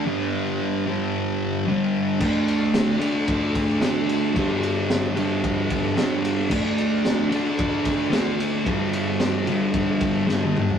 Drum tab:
CC |----------------|x---------------|----------------|x---------------|
RD |----------------|--x-x-x-x-x-x-x-|x-x-x-x-x-x-x-x-|--x-x-x-x-x-x-x-|
SD |----------------|----o-------o---|----o-------o---|----o-------o---|
T1 |----------------|----------------|----------------|----------------|
T2 |----------------|----------------|----------------|----------------|
FT |----------------|----------------|----------------|----------------|
BD |----------------|o-------o-o-----|o-------o-o-----|o-------o-o-----|

CC |----------------|
RD |x-x-x-x-x-x-----|
SD |----o-------o---|
T1 |-------------o--|
T2 |--------------o-|
FT |---------------o|
BD |o-------o-o-----|